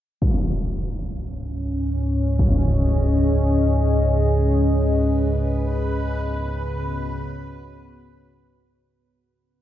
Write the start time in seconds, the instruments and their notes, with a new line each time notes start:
0.21 synth drone C#2 G#2, ambient pad C#4, impact
1.77 ambient pad D#5
2.18 ambient pad G#4
2.39 impact
4.56 ambient pad C#3, synth texture B4
5.72 ambient pad B3
6.53 ambient pad F#4 C#5